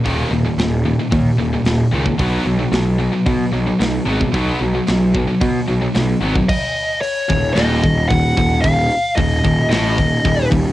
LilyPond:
<<
  \new Staff \with { instrumentName = "Lead electric guitar" } { \time 4/4 \key ces \lydian \tempo 4 = 112 r1 | r1 | r1 | ees''4 des''4 ees''4 ges''4 |
f''4 ees''4 ees''4. r8 | }
  \new Staff \with { instrumentName = "Distorted electric guitar" } { \clef bass \time 4/4 \key ces \lydian <ees, bes, ees>8 <ees, bes,>16 <ees, bes,>16 <ees, bes,>8 <ees, bes,>16 <ees, bes,>16 <ees, bes,>8 <ees, bes,>16 <ees, bes,>16 <ees, bes,>8 <ees, bes, ees>16 <ees, bes,>16 | <b, fis b>8 <b, fis>16 <b, fis>16 <b, fis>8 <b, fis>16 <b, fis>16 <b, fis>8 <b, fis>16 <b, fis>16 <b, fis>8 <b, fis b>16 <b, fis>16 | <b, fis b>8 <b, fis>16 <b, fis>16 <b, fis>8 <b, fis>16 <b, fis>16 <b, fis>8 <b, fis>16 <b, fis>16 <b, fis>8 <b, fis b>16 <b, fis>16 | r4. ees,8 ees,8 ees,8 ees,8 ees,8 |
ees,8 r8 ees,8 ees,8 a,8 ees,8 ees,8 ees,8 | }
  \new Staff \with { instrumentName = "Distorted electric guitar" } { \clef bass \time 4/4 \key ces \lydian <ees, bes, ees>8 <ees, bes,>16 <ees, bes,>16 <ees, bes,>8 <ees, bes,>16 <ees, bes,>16 <ees, bes,>8 <ees, bes,>16 <ees, bes,>16 <ees, bes,>8 <ees, bes, ees>16 <ees, bes,>16 | <b, fis b>8 <b, fis>16 <b, fis>16 <b, fis>8 <b, fis>16 <b, fis>16 <b, fis>8 <b, fis>16 <b, fis>16 <b, fis>8 <b, fis b>16 <b, fis>16 | <b, fis b>8 <b, fis>16 <b, fis>16 <b, fis>8 <b, fis>16 <b, fis>16 <b, fis>8 <b, fis>16 <b, fis>16 <b, fis>8 <b, fis b>16 <b, fis>16 | r4. ees,8 ees,8 ees,8 ees,8 ees,8 |
ees,8 r8 ees,8 ees,8 a,8 ees,8 ees,8 ees,8 | }
  \new Staff \with { instrumentName = "Distorted electric guitar" } { \clef bass \time 4/4 \key ces \lydian r1 | r1 | r1 | r4. ees,8 ees,8 ees,8 ees,8 ees,8 |
ees,8 r8 ees,8 ees,8 a,8 ees,8 ees,8 ees,8 | }
  \new Staff \with { instrumentName = "Picked electric bass" } { \clef bass \time 4/4 \key ces \lydian ees,,8 ees,,8 ees,,4 ees,8 ees,,8 ees,,8 des,8 | b,,8 b,,8 b,,4 b,8 b,,8 b,,8 aes,,8 | b,,8 b,,8 b,,4 b,8 b,,8 b,,8 aes,,8 | r4. ees,,8 ees,,8 ees,,8 ees,,8 ees,,8 |
ees,,8 r8 ees,,8 ees,,8 a,,8 ees,,8 ees,,8 ees,,8 | }
  \new DrumStaff \with { instrumentName = "Drums" } \drummode { \time 4/4 <hho bd>4 <hho sn>4 <hho bd>4 <hho sn>8. bd16 | <hho bd>4 <hho sn>4 <hho bd>4 <hho sn>8. bd16 | <hho bd>4 <hho sn>8 bd8 <hho bd>4 <hho sn>8. bd16 | <cymc bd>8 hho8 hho8 <hho bd>8 <hho sn>8 bd8 <hho bd>8 <hho bd>8 |
<hho bd>8 hho8 <hho bd>8 <hho bd>8 <hho sn>8 <hho bd>8 <hho bd>8 <hho bd>8 | }
>>